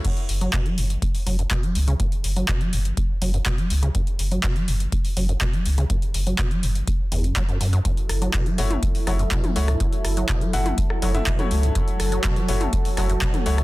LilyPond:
<<
  \new Staff \with { instrumentName = "Analog synth pad" } { \time 4/4 \key fis \minor \tempo 4 = 123 << { r1 | r1 | r1 | r1 |
<fis a'>1~ | <fis a'>1~ | <fis a'>1 | } \\ { r1 | r1 | r1 | r1 |
e'1~ | e'1 | fis'1 | } >> }
  \new Staff \with { instrumentName = "Grand piano" } { \time 4/4 \key fis \minor r1 | r1 | r1 | r1 |
r4. <a e' fis' cis''>16 r8. <a e' fis' cis''>16 r8. <a e' fis' cis''>16 r16 | r4. <a e' fis' fis''>16 r8. <a e' fis' cis''>16 <a e' fis' e''>16 r16 <a e' fis' cis''>8.~ | <a e' fis' cis''>4. <a e' fis' cis''>16 r8. <a e' fis' cis''>16 r8. <a e' fis' cis''>16 r16 | }
  \new Staff \with { instrumentName = "Acid bass" } { \clef bass \time 4/4 \key fis \minor fis,16 r8 fis16 b,16 fis16 g,16 r8. fis16 fis,16 b,16 fis16 a16 cis16 | fis,16 r8 fis16 b,16 fis16 g,16 r8. fis16 fis,16 b,16 fis16 a16 cis16 | fis,16 r8 fis16 b,16 fis16 g,16 r8. fis16 fis,16 b,16 fis16 a16 cis16 | fis,16 r8 fis16 b,16 fis16 g,16 r8. e,16 fis,16 fis16 fis,16 fis,16 fis,16 |
fis,16 r8 fis16 b,16 fis16 g,16 r8. fis16 fis,16 b,16 fis16 a16 fis,16 | fis,16 r8 fis16 b,16 fis16 g,16 r8. fis16 fis,16 b,16 fis16 a16 fis,16 | fis,16 r8 fis16 b,16 fis16 g,16 r8. fis16 fis,16 b,16 fis16 a16 fis,16 | }
  \new Staff \with { instrumentName = "Sub bass" } { \clef bass \time 4/4 \key fis \minor r8 fis,,8 r8 fis,,8 r8 fis,,8 r8 cis,8 | r8 fis,,8 r8 fis,,8 r8 fis,,8 r8 cis,8 | r8 fis,,8 r8 fis,,8 r8 fis,,8 r8 cis,8 | r8 fis,,8 r8 fis,,8 r8 fis,,8 r8 fis,8 |
r8 fis,,8 r8 fis,,8 r8 fis,,8 r8 cis,8 | r8 fis,,8 r8 fis,,8 r8 fis,,8 r8 cis,8 | r8 fis,,8 r8 fis,,8 r8 fis,,8 r8 cis,8 | }
  \new DrumStaff \with { instrumentName = "Drums" } \drummode { \time 4/4 <cymc hh bd>16 hh16 hho16 hh16 <hc hh bd>16 hh16 hho16 hh16 <hh bd>16 hho16 <hho bd>16 hh16 <hc hh bd>16 hh16 hho16 hh16 | <hh bd>16 hh16 hho16 hh16 <hc hh bd>16 hh16 hho16 hh16 <hh bd>8 <hho bd>16 hh16 <hc hh bd>16 hh16 hho16 hh16 | <hh bd>16 hh16 hho16 hh16 <hc hh bd>16 hh16 hho16 hh16 <hh bd>16 hho16 <hho bd>16 hh16 <hc hh bd>16 hh16 hho16 hh16 | <hh bd>16 hh16 hho16 hh16 <hc hh bd>16 hh16 hho16 hh16 <hh bd>8 <hho bd>16 hh16 <hc hh bd>16 hh16 hho16 hh16 |
<hh bd>16 hh16 <hho ss>16 hh16 <hc hh bd>16 hh16 hho16 <hh toml>16 <hh bd>16 hho16 <hho bd ss>16 hh16 <hc hh bd>16 <hh toml>16 hho16 <hh ss>16 | <hh bd>16 hh16 <hho ss>16 hh16 <hc hh bd>16 hh16 hho16 <hh toml>16 <hh bd>16 ss16 <hho bd>16 <hh toml>16 <hc hh bd>16 <hh toml>16 hho16 hh16 | <hh bd>16 hh16 <hho ss>16 hh16 <hc hh bd>16 hh16 hho16 <hh toml>16 <hh bd>16 hho16 <hho bd ss>16 hh16 <hc hh bd>16 <hh toml>16 hho16 <hh ss>16 | }
>>